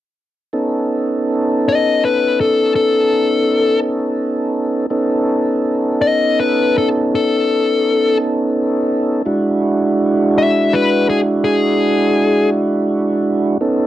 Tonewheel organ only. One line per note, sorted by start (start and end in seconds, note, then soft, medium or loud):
0.53 4.86 B3 medium
0.53 4.86 C#4 medium
0.53 4.86 D#4 medium
0.53 4.86 A4 medium
4.90 9.22 B3 medium
4.90 9.23 C#4 medium
4.90 9.23 D#4 medium
4.90 9.22 A4 medium
9.26 13.58 G#3 medium
9.26 13.58 D4 medium
9.26 13.57 E4 medium
9.26 13.58 F#4 medium
13.61 13.87 B3 medium
13.61 13.87 C#4 medium
13.61 13.87 D#4 medium
13.61 13.87 A4 medium